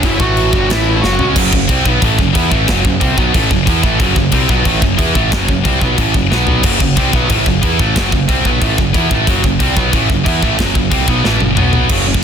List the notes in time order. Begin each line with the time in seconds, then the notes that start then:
0.03 F#1 F#2 C#3 F#3 E4, kick, crash
0.20 A1 A2 E3 A3 F#4, kick
0.37 crash
0.53 G1 G2 D3 G3, kick
0.69 A1 A2 E3 A3 E4, snare, crash
0.97 E4
1.02 F#1 F#2 C#3 F#3 F#4, snare
1.19 C#2 C#3 G#3 C#4, floor tom
1.36 F#1 F#2 C#3 F#3, kick, crash
1.52 F#1 F#2 C#3, kick
1.68 C2 C3 G3 C4, kick, crash
1.84 B1 B2 F#3 B3, kick
2.01 A1 A2 E3 A3, kick, crash
2.18 F#1 F#2 C#3, kick
2.33 E2 E3 B3 E4, kick, crash
2.49 A1 A2 E3 A3, kick
2.67 F#1 F#2 C#3 F#3, kick, snare, crash
2.84 F#1 F#2 C#3, kick
3.00 C2 C3 G3 C4, kick, crash
3.16 B1 B2 F#3 B3, kick
3.33 A1 A2 E3 A3, kick, crash
3.49 F#1 F#2 C#3, kick
3.66 E2 E3 B3 E4, kick, crash
3.81 A1 A2 E3 A3, kick
3.99 F#1 F#2 C#3 F#3, kick, crash
4.16 F#1 F#2 C#3, kick
4.32 C2 C3 G3 C4, kick, crash
4.49 B1 B2 F#3 B3, kick
4.65 A1 A2 E3 A3, kick, crash
4.81 F#1 F#2 C#3, kick
4.97 E2 E3 B3 E4, kick, crash
5.14 A1 A2 E3 A3, kick
5.31 F#1 F#2 C#3 F#3, kick, snare, crash
5.48 F#1 F#2 C#3, kick
5.64 C2 C3 G3 C4, kick, crash
5.80 B1 B2 F#3 B3, kick
5.97 A1 A2 E3 A3, kick, crash
6.14 F#1 F#2 C#3, kick
6.30 B1 B2 F#3 B3, snare
6.47 floor tom
6.62 F#1 F#2 C#3 F#3, kick, crash
6.79 F#1 F#2 C#3, kick
6.96 C2 C3 G3 C4, kick, crash
7.12 B1 B2 F#3 B3, kick
7.29 A1 A2 E3 A3, kick, crash
7.46 F#1 F#2 C#3, kick
7.62 E2 E3 B3 E4, kick, crash
7.79 A1 A2 E3 A3, kick
7.95 F#1 F#2 C#3 F#3, kick, snare, crash
8.11 F#1 F#2 C#3, kick
8.28 C2 C3 G3 C4, kick, crash
8.45 B1 B2 F#3 B3, kick
8.61 A1 A2 E3 A3, kick, crash
8.77 F#1 F#2 C#3, kick
8.93 E2 E3 B3 E4, kick, crash
9.10 A1 A2 E3 A3, kick
9.26 F#1 F#2 C#3 F#3, kick, crash
9.43 F#1 F#2 C#3, kick
9.59 C2 C3 G3 C4, kick, crash
9.75 B1 B2 F#3 B3, kick
9.91 A1 A2 E3 A3, kick, crash
10.07 F#1 F#2 C#3, kick
10.24 E2 E3 B3 E4, kick, crash
10.41 A1 A2 E3 A3, kick
10.57 F#1 F#2 C#3 F#3, kick, snare, crash
10.74 F#1 F#2 C#3, kick
10.91 C2 C3 G3 C4, kick, crash
11.07 B1 B2 F#3 B3, kick
11.23 A1 A2 E3 A3, snare
11.40 F#1 F#2 C#3, high tom
11.55 B1 B2 F#3 B3, mid tom
11.73 floor tom
11.89 F#1 F#2 C#3 F#3, kick, crash
12.06 F#1 F#2 C#3
12.14 F#2 C#3, kick